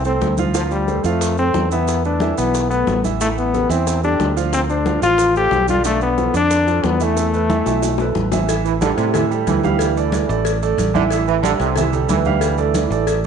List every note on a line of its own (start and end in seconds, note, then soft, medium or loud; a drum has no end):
0.00 0.18 C2 medium
0.05 0.32 A3 medium
0.05 0.37 C4 medium
0.05 0.33 A4 medium
0.05 0.33 C5 medium
0.05 high bongo soft
0.05 high conga soft
0.05 maracas soft
0.21 0.99 D2 medium
0.21 high bongo medium
0.21 low bongo medium
0.21 high conga medium
0.21 maracas soft
0.38 0.52 F3 medium
0.38 0.52 F4 medium
0.38 0.52 F5 medium
0.38 high bongo soft
0.38 high conga medium
0.38 maracas medium
0.54 0.82 F3 medium
0.54 0.63 F3 medium
0.54 0.82 F4 medium
0.54 0.82 F5 medium
0.54 high bongo medium
0.54 high conga soft
0.54 maracas medium
0.71 1.07 G3 medium
0.71 high conga soft
0.71 maracas soft
0.88 1.02 A3 medium
0.88 1.02 A4 medium
0.88 1.02 C5 medium
0.88 high bongo medium
0.88 high conga medium
0.88 maracas soft
1.04 1.51 F2 medium
1.04 1.32 F3 medium
1.04 1.38 A3 medium
1.04 1.32 F4 medium
1.04 1.33 F5 medium
1.04 maracas medium
1.21 high bongo medium
1.21 maracas medium
1.37 1.66 A3 medium
1.37 1.69 C4 loud
1.37 1.66 A4 medium
1.37 1.66 C5 medium
1.37 high conga soft
1.37 maracas soft
1.54 2.32 E2 medium
1.54 high bongo medium
1.54 low bongo medium
1.54 high conga medium
1.54 maracas soft
1.71 1.99 E3 medium
1.71 2.02 B3 medium
1.71 1.99 E4 medium
1.71 1.99 E5 medium
1.71 high conga soft
1.71 maracas medium
1.88 high bongo medium
1.88 high conga soft
1.88 maracas medium
2.04 2.18 A3 medium
2.04 2.36 D4 medium
2.04 2.19 A4 medium
2.04 2.19 B4 medium
2.04 high conga soft
2.04 maracas soft
2.20 2.35 E3 medium
2.20 2.35 E4 medium
2.20 2.35 E5 medium
2.20 high bongo medium
2.20 high conga medium
2.20 maracas soft
2.37 2.84 B1 medium
2.37 2.65 E3 medium
2.37 2.68 B3 medium
2.37 2.65 E4 medium
2.37 2.65 E5 medium
2.37 high bongo soft
2.37 high conga soft
2.37 maracas medium
2.53 high bongo medium
2.53 high conga soft
2.53 maracas medium
2.70 2.98 A3 medium
2.70 3.01 B3 medium
2.70 2.98 A4 medium
2.70 2.99 B4 medium
2.70 high bongo soft
2.70 high conga soft
2.70 maracas soft
2.87 3.65 A1 medium
2.87 high bongo medium
2.87 low bongo medium
2.87 high conga medium
2.87 maracas soft
3.04 3.17 E3 medium
3.04 3.18 E4 medium
3.04 3.18 E5 medium
3.04 high bongo soft
3.04 high conga medium
3.04 maracas medium
3.21 3.48 E3 medium
3.21 3.28 A3 medium
3.21 3.48 E4 medium
3.21 3.48 E5 medium
3.21 high bongo medium
3.21 high conga soft
3.21 maracas medium
3.37 3.72 B3 medium
3.37 high conga soft
3.37 maracas soft
3.54 3.67 G3 medium
3.54 3.67 G4 medium
3.54 3.68 A4 medium
3.54 high bongo medium
3.54 high conga medium
3.54 maracas soft
3.69 4.16 E2 medium
3.69 3.97 E3 medium
3.69 4.03 C4 loud
3.69 3.97 E4 medium
3.69 3.97 E5 medium
3.69 high conga soft
3.69 maracas medium
3.87 high bongo medium
3.87 high conga soft
3.87 maracas medium
4.03 4.30 G3 medium
4.03 4.35 D4 medium
4.03 4.31 G4 medium
4.03 4.31 A4 medium
4.03 high conga soft
4.03 maracas soft
4.20 4.97 D2 medium
4.20 high bongo medium
4.20 low bongo medium
4.20 high conga medium
4.20 maracas soft
4.36 4.64 F3 medium
4.36 4.64 F4 medium
4.36 4.64 F5 medium
4.36 high conga soft
4.36 maracas medium
4.53 4.61 C4 loud
4.53 high bongo medium
4.53 maracas medium
4.69 4.83 A3 medium
4.69 5.00 D4 medium
4.69 4.83 A4 medium
4.69 4.83 C5 medium
4.69 high conga soft
4.69 maracas soft
4.86 5.00 F3 medium
4.86 5.00 F4 medium
4.86 5.00 F5 medium
4.86 high bongo medium
4.86 high conga medium
4.86 maracas soft
5.02 5.48 A1 medium
5.02 5.29 F3 medium
5.02 5.30 F4 medium
5.02 5.34 F4 loud
5.02 5.30 F5 medium
5.02 maracas medium
5.18 high bongo medium
5.18 high conga soft
5.18 maracas medium
5.35 5.62 A3 medium
5.35 5.67 G4 loud
5.35 5.63 A4 medium
5.35 5.63 C5 medium
5.35 high bongo soft
5.35 high conga soft
5.35 maracas soft
5.51 6.28 B1 medium
5.51 high bongo medium
5.51 low bongo medium
5.51 high conga medium
5.51 maracas soft
5.68 5.82 D3 medium
5.68 5.82 D4 medium
5.68 5.84 F4 loud
5.68 5.82 D5 medium
5.68 high bongo soft
5.68 high conga medium
5.68 maracas medium
5.84 6.12 D3 medium
5.84 6.01 A3 loud
5.84 6.12 D4 medium
5.84 6.12 D5 medium
5.84 high bongo medium
5.84 high conga soft
5.84 maracas medium
6.01 6.32 B3 medium
6.01 high conga soft
6.01 maracas soft
6.18 6.31 F3 medium
6.18 6.32 F4 medium
6.18 6.32 A4 medium
6.18 high bongo medium
6.18 high conga medium
6.18 maracas soft
6.34 6.80 F2 medium
6.34 6.61 D3 medium
6.34 6.62 D4 medium
6.34 6.87 D4 loud
6.34 6.62 D5 medium
6.34 maracas medium
6.51 high bongo medium
6.51 high conga soft
6.51 maracas medium
6.67 6.94 F3 medium
6.67 6.94 F4 medium
6.67 6.94 A4 medium
6.67 high conga soft
6.67 maracas soft
6.84 7.60 E2 medium
6.84 7.04 B3 medium
6.84 high bongo medium
6.84 low bongo medium
6.84 high conga medium
6.84 maracas soft
7.00 7.28 E3 medium
7.00 8.17 A3 loud
7.00 7.27 E4 medium
7.00 7.28 E5 medium
7.00 high conga soft
7.00 maracas medium
7.17 high bongo medium
7.17 maracas medium
7.34 7.47 A3 medium
7.34 7.47 A4 medium
7.34 7.47 B4 medium
7.34 high conga soft
7.34 maracas soft
7.49 7.63 E3 medium
7.49 7.63 E4 medium
7.49 7.63 E5 medium
7.49 high conga loud
7.49 maracas soft
7.66 8.12 B1 medium
7.66 7.93 E3 medium
7.66 7.93 E4 medium
7.66 7.94 E5 medium
7.66 low bongo medium
7.66 high conga soft
7.66 maracas medium
7.82 low bongo medium
7.82 high conga soft
7.82 maracas medium
7.98 8.26 A3 medium
7.98 8.26 A4 medium
7.98 8.27 B4 medium
7.98 low bongo loud
7.98 high conga soft
7.98 maracas soft
8.15 8.92 A1 medium
8.15 low bongo medium
8.15 high conga medium
8.15 maracas soft
8.32 8.46 E3 medium
8.32 8.46 E4 medium
8.32 8.46 E5 medium
8.32 low bongo medium
8.32 high conga medium
8.32 maracas medium
8.49 8.76 E3 medium
8.49 8.76 E4 medium
8.49 8.76 E5 medium
8.49 cowbell loud
8.49 high conga soft
8.49 maracas medium
8.65 8.73 E3 medium
8.65 high conga soft
8.65 maracas soft
8.81 8.90 D3 medium
8.81 9.08 G3 medium
8.81 9.09 G4 medium
8.81 9.08 A4 medium
8.81 cowbell medium
8.81 high conga loud
8.81 maracas medium
8.97 9.43 A2 medium
8.97 9.24 C3 medium
8.97 cowbell medium
8.97 high conga soft
8.97 maracas soft
9.14 9.27 E3 medium
9.14 9.28 E4 medium
9.14 9.28 E5 medium
9.14 cowbell loud
9.14 high conga soft
9.14 low conga medium
9.14 maracas medium
9.31 9.58 G3 medium
9.31 9.58 G4 medium
9.31 9.58 A4 medium
9.31 high conga soft
9.31 maracas soft
9.47 10.23 D2 medium
9.47 10.42 E3 medium
9.47 cowbell medium
9.47 high conga medium
9.47 maracas medium
9.63 9.91 G3 medium
9.63 9.91 G4 medium
9.63 9.91 F5 medium
9.63 high conga medium
9.63 maracas soft
9.79 cowbell loud
9.79 high conga soft
9.79 maracas medium
9.96 10.23 A3 medium
9.96 10.24 A4 medium
9.96 10.24 D5 medium
9.96 high conga soft
9.96 maracas soft
10.12 cowbell medium
10.12 high conga medium
10.12 maracas medium
10.29 10.75 A1 loud
10.29 10.56 A3 medium
10.29 10.56 A4 medium
10.29 10.56 D5 medium
10.29 maracas soft
10.45 cowbell loud
10.45 high conga soft
10.45 maracas medium
10.62 10.89 A3 medium
10.62 10.89 A4 medium
10.62 10.89 D5 medium
10.62 high conga soft
10.62 maracas soft
10.77 11.54 A1 medium
10.77 cowbell medium
10.77 high conga medium
10.77 maracas medium
10.94 11.03 D3 medium
10.94 11.08 E3 medium
10.94 11.08 E4 loud
10.94 11.08 E5 medium
10.94 high conga medium
10.94 maracas soft
11.10 11.38 E3 medium
11.10 11.38 E4 medium
11.10 11.39 E5 medium
11.10 cowbell loud
11.10 high conga soft
11.10 maracas medium
11.27 11.36 E3 medium
11.27 maracas soft
11.42 11.51 D3 medium
11.42 11.71 G3 medium
11.42 11.71 G4 medium
11.42 11.71 A4 medium
11.42 cowbell medium
11.42 high conga loud
11.42 maracas medium
11.59 12.06 C2 loud
11.59 11.86 C3 medium
11.59 cowbell medium
11.59 high conga soft
11.59 maracas soft
11.76 11.90 E3 medium
11.76 11.90 E4 medium
11.76 11.91 E5 medium
11.76 cowbell loud
11.76 high conga soft
11.76 low conga medium
11.76 maracas medium
11.93 12.20 G3 medium
11.93 12.20 G4 medium
11.93 12.20 A4 medium
11.93 high conga soft
11.93 low conga medium
11.93 maracas soft
12.08 12.86 D2 medium
12.08 13.04 E3 medium
12.08 cowbell medium
12.08 high conga medium
12.08 maracas medium
12.25 12.53 G3 medium
12.25 12.53 G4 medium
12.25 12.53 F5 medium
12.25 high conga medium
12.25 maracas soft
12.41 cowbell loud
12.41 high conga soft
12.41 maracas medium
12.58 12.85 A3 medium
12.58 12.85 A4 medium
12.58 12.85 D5 medium
12.58 high conga soft
12.58 maracas soft
12.74 cowbell medium
12.74 high conga medium
12.74 maracas medium
12.90 13.27 A1 loud
12.90 13.18 A3 medium
12.90 13.18 A4 medium
12.90 13.19 D5 medium
12.90 maracas soft
13.07 cowbell loud
13.07 high conga soft
13.07 maracas medium